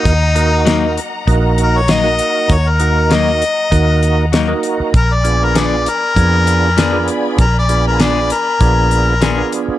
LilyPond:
<<
  \new Staff \with { instrumentName = "String section" } { \time 4/4 \key ees \minor \tempo 4 = 98 <ees'' ges'' bes''>1~ | <ees'' ges'' bes''>1 | <d'' aes'' ces'''>1~ | <d'' aes'' ces'''>1 | }
  \new Staff \with { instrumentName = "Harmonica" } { \time 4/4 \key ees \minor ees'4. r4 bes'16 des''16 ees''4 | des''16 bes'8. ees''2 r4 | bes'16 d''8 bes'16 d''8 bes'2 r8 | bes'16 d''8 bes'16 d''8 bes'2 r8 | }
  \new Staff \with { instrumentName = "Tonewheel organ" } { \time 4/4 \key ees \minor r8 <bes ees' ges' bes'>4 r8 <bes ees' ges' bes'>8. r8 <bes ees' ges' bes'>8. | r8 <bes ees' ges' bes'>4 r8 <bes ees' ges' bes'>8. r8 <bes ees' ges' bes'>8. | r8 <ces' d' f' aes'>4 r8 <ces' d' f' aes'>8. r8 <ces' d' f' aes'>8. | r8 <ces' d' f' aes'>4 r8 <ces' d' f' aes'>8. r8 <ces' d' f' aes'>8. | }
  \new Staff \with { instrumentName = "Clean electric guitar" } { \time 4/4 \key ees \minor r4 <ges bes ees'>8 r4. <ges bes ees'>8 r8 | r4 <ges bes ees'>8 r4. <ges bes ees'>8 r8 | r4 <f ces' d' aes'>8 r4. <f ces' d' aes'>8 r8 | r4 <f ces' d' aes'>8 r4. <f ces' d' aes'>8 r8 | }
  \new Staff \with { instrumentName = "Fingered electric bass" } { \clef bass \time 4/4 \key ees \minor ees,2 bes,,2 | ees,2 ees,4.~ ees,16 r16 | bes,,2 f,2 | bes,,2 bes,,4.~ bes,,16 r16 | }
  \new DrumStaff \with { instrumentName = "Drums" } \drummode { \time 4/4 <hh bd>8 hh8 <hh sn>8 hh8 <hh bd>8 hh8 <hh sn>8 hh8 | <hh bd>8 hh8 <hh sn>8 hh8 <hh bd>8 hh8 <hh sn>8 hh8 | <hh bd>8 hh8 <hh sn>8 hh8 <hh bd>8 hh8 <hh sn>8 hh8 | <hh bd>8 hh8 <hh sn>8 hh8 <hh bd>8 hh8 <hh sn>8 hh8 | }
>>